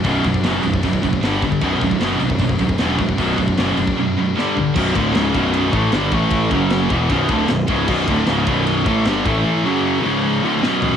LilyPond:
<<
  \new Staff \with { instrumentName = "Distorted electric guitar" } { \clef bass \time 4/4 \key b \minor \tempo 4 = 153 <b,, fis, b, fis d'>4. <b,, fis, b, fis d'>4. <g, d g>4 | <b,, fis, b, fis d'>4. <b,, fis, b, fis d'>4. <b,, fis, b, fis d'>4 | <b,, fis, b, fis d'>4. <b,, fis, b, fis d'>4. <g, d g>4 | <b,, fis, b,>8 <d, a, d>8 <cis, gis, cis>8 <b,, fis, b,>4 <a, e a>8 <g, d g>8 <a, e a>8~ |
<a, e a>8 <fis, cis fis>4 <e, b, e>8 <b,, fis, b,>8 <d, a, d>8 <b,, fis,>8 <cis, gis, cis>8 | <b,, fis, b,>8 <d, a, d>8 <cis, gis, cis>8 <b,, fis, b,>4 <a, e a>8 <g, d g>8 <a, e a>8~ | <a, e a>8 <fis, cis fis>4 <cis, gis, cis>4 <d, a, d>8 <b,, fis, b,>4 | }
  \new Staff \with { instrumentName = "Distorted electric guitar" } { \clef bass \time 4/4 \key b \minor <b,, fis, b,>8 <b,, fis,>8 <b,, fis, b,>8 <b,, fis,>8 <b,, fis,>8 <b,, fis,>8 <g, d g>8 <g, d>8 | <b,, fis, b,>8 <b,, fis,>8 <b,, fis, b,>8 <b,, fis,>8 <b,, fis,>8 <b,, fis,>8 <b,, fis, b,>8 <b,, fis,>8 | <b,, fis, b,>8 <b,, fis,>8 <b,, fis, b,>8 <b,, fis,>8 <b,, fis,>8 <b,, fis,>8 <g, d g>8 <g, d>8 | <b,, fis, b,>8 <d, a, d>8 <cis, gis, cis>8 <b,, fis, b,>4 <a, e a>8 <g, d g>8 <a, e a>8~ |
<a, e a>8 <fis, cis fis>4 <e, b, e>8 <b,, fis, b,>8 <d, a, d>8 <b,, fis,>8 <cis, gis, cis>8 | <b,, fis, b,>8 <d, a, d>8 <cis, gis, cis>8 <b,, fis, b,>4 <a, e a>8 <g, d g>8 <a, e a>8~ | <a, e a>8 <fis, cis fis>4 <cis, gis, cis>4 <d, a, d>8 <b,, fis, b,>4 | }
  \new Staff \with { instrumentName = "Distorted electric guitar" } { \clef bass \time 4/4 \key b \minor <b,, fis, b,>8 <b,, fis,>8 <b,, fis, b,>8 <b,, fis,>8 <b,, fis,>8 <b,, fis,>8 <g, d g>8 <g, d>8 | <b,, fis, b,>8 <b,, fis,>8 <b,, fis, b,>8 <b,, fis,>8 <b,, fis,>8 <b,, fis,>8 <b,, fis, b,>8 <b,, fis,>8 | <b,, fis, b,>8 <b,, fis,>8 <b,, fis, b,>8 <b,, fis,>8 <b,, fis,>8 <b,, fis,>8 <g, d g>8 <g, d>8 | <b,, fis, b,>8 <d, a, d>8 <cis, gis, cis>8 <b,, fis, b,>4 <a, e a>8 <g, d g>8 <a, e a>8~ |
<a, e a>8 <fis, cis fis>4 <e, b, e>8 <b,, fis, b,>8 <d, a, d>8 <b,, fis,>8 <cis, gis, cis>8 | <b,, fis, b,>8 <d, a, d>8 <cis, gis, cis>8 <b,, fis, b,>4 <a, e a>8 <g, d g>8 <a, e a>8~ | <a, e a>8 <fis, cis fis>4 <cis, gis, cis>4 <d, a, d>8 <b,, fis, b,>4 | }
  \new Staff \with { instrumentName = "Picked electric bass" } { \clef bass \time 4/4 \key b \minor b,,,8 b,,,8 fis,,8 b,,,8 b,,,8 fis,,8 g,,4 | b,,,8 b,,,8 fis,,8 b,,,8 b,,,8 d,,8 e,,4 | b,,,8 b,,,8 fis,,8 fis,,8 r2 | b,,,8 d,,8 cis,,8 b,,,4 a,,8 g,,8 a,,8~ |
a,,8 fis,,4 e,,8 b,,,8 d,,8 b,,,8 cis,,8 | b,,,8 d,,8 cis,,8 b,,,4 a,,8 g,,8 a,,8 | r1 | }
  \new DrumStaff \with { instrumentName = "Drums" } \drummode { \time 4/4 <hho bd>8 <hho bd>16 bd16 <hho sn>8 hho16 bd16 <hho bd>16 bd16 <hho bd>16 bd16 <hho sn>8 <hho bd>16 bd16 | <cymc bd>8 <hho bd>16 bd16 <hho sn>8 hho16 bd16 <hho bd>16 bd16 <hho bd>16 bd16 <hho sn>8 <hho bd>16 bd16 | <hho bd>8 <hho bd>16 bd16 <hho sn>8 hho16 bd16 r4 sn8 tomfh8 | <cymc bd>8 <bd cymr>8 <cymr sn>8 <bd cymr>8 cymr8 <bd cymr>8 <cymr sn>8 <bd cymr>8 |
<bd cymr>8 <bd cymr>8 <cymr sn>8 <bd cymr>8 <bd cymr>8 <bd cymr>8 <cymr sn>8 <bd cymr>8 | <cymc bd>8 <bd cymr>8 <cymr sn>8 <bd cymr>8 cymr8 <bd cymr>8 <cymr sn>8 <bd cymr>8 | r4 r4 r4 sn8 tomfh8 | }
>>